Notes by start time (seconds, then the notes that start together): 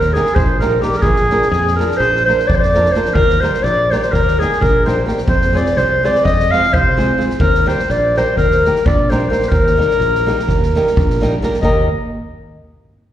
Already playing: D#2 A#4
0.01 snare
0.13 G3 A#3 D#4 G4 G#4, snare
0.17 A#4
0.26 snare
0.35 A#1 C5, kick
0.60 G3 A#3 D#4 G4 A#4, snare
0.81 G3 A#3 D#4 G4 A#4, snare
0.92 A#4, snare
0.97 G#4 A#4
1.01 A#1 G#4, kick
1.16 snare
1.29 F3 A#3 D4 F4 A#4, snare
1.41 snare
1.49 F2 G#4, snare
1.67 snare
1.76 F3 A#3 D4 A#4, snare
1.80 F4 A#4
1.91 snare
1.97 A#1 C5, snare
2.15 snare
2.25 F3 A#3 D4 F4 A#4 C5, snare
2.39 snare
2.47 F2 D5, kick
2.55 C5
2.60 D5, snare
2.74 F3 A#3 D4 F4 A#4, snare
2.85 snare
2.92 F3 A#3 C5, snare
2.96 D4 F4 A#4
3.05 snare
3.14 D#2 A#4, kick
3.29 snare
3.41 G3 A#3 D#4 G4 A#4 C5, snare
3.53 snare
3.63 A#1 D5, snare
3.91 G3 A#3 D#4 G4 A#4 C5, snare
3.96 D5
4.02 C5, snare
4.12 D#2 A#4, kick, snare
4.27 snare
4.39 G3 A#3 D#4 G4 G#4 A#4, snare
4.52 snare
4.61 A#1 A#4, kick
4.85 G3 A#3 D#4 G4 A#4 C5, snare
5.06 G3 A#3 D#4 G4 A#4, snare
5.17 snare
5.28 F2 C5, kick
5.41 snare
5.53 G#3 C4 F4 G#4 C5 D5, snare
5.65 snare
5.77 C2 C5, snare
6.03 G#3 C4 F4 G#4 C5 D5, snare
6.15 snare
6.24 F2 D#5, kick, snare
6.39 snare
6.51 G#3 C4 F4 G#4 C5 F5, snare
6.63 snare
6.74 C2 C5, kick
6.97 G#3 C4 F4 G#4 C5, snare
7.17 G#3 C4 F4 G#4 C5, snare
7.30 snare
7.40 D#2 A#4, kick
7.54 snare
7.66 G3 A#3 D#4 G4 A#4 C5, snare
7.79 snare
7.89 A#1 D5, snare
8.16 G3 A#3 D#4 G4 A#4 C5, snare
8.36 D#2 A#4, kick, snare
8.51 snare
8.65 G3 A#3 D#4 G4 A#4, snare
8.75 snare
8.86 A#1 D5, kick
9.09 G3 A#3 D#4 G4 A#4 C5, snare
9.29 G3 A#3 D#4 G4 A#4 C5, snare
9.42 snare
9.49 D#2 A#4, kick
9.66 snare
9.77 G3 A#3 D#4 G4 A#4, snare
9.90 snare
10.00 A#1, snare
10.14 snare
10.26 G3 A#3 D#4 G4 A#4, snare
10.39 snare
10.48 D#2, kick, snare
10.62 snare
10.75 G3 A#3 D#4 G4 A#4, snare
10.87 snare
10.97 A#1, kick
11.10 snare
11.21 G3 A#3 D#4 G4 A#4, snare
11.42 G3 A#3 D#4 G4 A#4, snare
11.53 snare
11.62 D#2 A#3 D#4 G4 A#4 D#5, kick